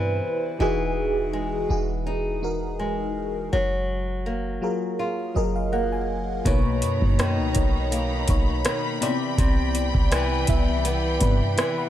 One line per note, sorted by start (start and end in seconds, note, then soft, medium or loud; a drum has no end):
0.00 0.21 G2 loud
0.00 0.62 B2 medium
0.00 0.60 C3 medium
0.00 0.62 C3 medium
0.00 0.60 E3 medium
0.00 1.33 B3 medium
0.00 0.61 E4 medium
0.00 0.62 B4 medium
0.00 0.62 C5 medium
0.59 1.66 E1 loud
0.59 1.29 E3 loud
0.59 3.52 E3 medium
0.59 1.30 D#4 medium
0.59 1.30 F#4 medium
0.59 1.30 G#4 loud
1.33 2.79 G#3 medium
1.69 3.49 E1 loud
1.69 2.16 E3 medium
1.69 2.17 D#4 medium
1.69 2.17 F#4 medium
1.69 2.17 G#4 medium
2.07 3.61 D#4 medium
2.42 3.36 E3 medium
2.42 3.37 D#4 medium
2.42 3.37 F#4 medium
2.42 3.37 A#4 medium
2.79 4.26 G#3 medium
3.53 4.59 F#1 loud
3.53 7.03 F#3 medium
4.26 5.72 A#3 medium
4.62 5.09 F#3 medium
4.62 5.09 F4 medium
4.62 5.10 G#4 medium
4.62 5.10 A#4 medium
4.99 6.54 F4 medium
5.35 6.42 F#1 loud
5.35 6.05 F#3 medium
5.35 6.05 F4 medium
5.35 6.06 G#4 medium
5.35 6.06 A#4 medium
5.35 5.54 D#5 medium
5.56 5.71 F5 medium
5.72 7.91 A#3 medium
5.72 5.91 F#5 medium
5.92 6.42 G#5 medium
6.45 6.84 B1 loud
6.45 7.15 B2 loud
6.45 9.01 B2 medium
6.45 7.15 A#3 medium
6.45 8.99 D#4 medium
6.45 7.16 D#4 medium
6.45 8.99 C#5 medium
6.45 7.16 C#5 loud
6.45 8.99 A#5 medium
6.45 11.89 B5 medium
6.45 kick loud
6.45 closed hi-hat medium
6.82 7.01 F#2 medium
6.82 closed hi-hat medium
7.02 7.40 F#2 loud
7.02 kick medium
7.19 8.64 D#3 medium
7.19 cross-stick loud
7.19 closed hi-hat medium
7.39 7.55 C#2 medium
7.54 8.26 B1 loud
7.54 8.02 B2 medium
7.54 8.02 A#3 medium
7.54 8.02 D#4 medium
7.54 8.03 C#5 medium
7.54 kick medium
7.54 closed hi-hat medium
7.92 9.10 A#3 medium
7.92 closed hi-hat medium
8.28 8.64 B1 loud
8.28 9.01 B2 medium
8.28 9.02 A#3 medium
8.28 9.02 D#4 medium
8.28 9.02 C#5 medium
8.28 kick medium
8.28 closed hi-hat medium
8.65 9.10 D#3 medium
8.65 cross-stick loud
8.65 closed hi-hat medium
9.01 10.19 C3 medium
9.01 9.37 C3 medium
9.01 11.89 E3 medium
9.01 10.19 B3 medium
9.01 10.20 E4 medium
9.01 11.89 D5 medium
9.01 10.20 D5 medium
9.01 11.89 G5 medium
9.01 closed hi-hat medium
9.38 9.92 C2 loud
9.38 11.89 C3 medium
9.38 kick loud
9.38 closed hi-hat medium
9.75 closed hi-hat medium
9.95 10.46 C2 medium
9.95 kick medium
10.11 11.57 E3 medium
10.11 cross-stick loud
10.11 closed hi-hat medium
10.47 11.19 C2 loud
10.47 10.94 C3 medium
10.47 10.95 B3 medium
10.47 10.95 E4 medium
10.47 10.96 E5 medium
10.47 kick medium
10.47 closed hi-hat medium
10.85 11.89 B3 medium
10.85 closed hi-hat medium
11.20 11.56 G2 loud
11.20 11.89 C3 medium
11.20 11.89 B3 medium
11.20 11.89 E4 medium
11.20 11.89 B4 medium
11.20 kick medium
11.20 closed hi-hat medium
11.58 11.89 E3 medium
11.58 cross-stick loud
11.58 closed hi-hat medium
11.78 11.89 F#5 medium
11.78 11.89 B5 medium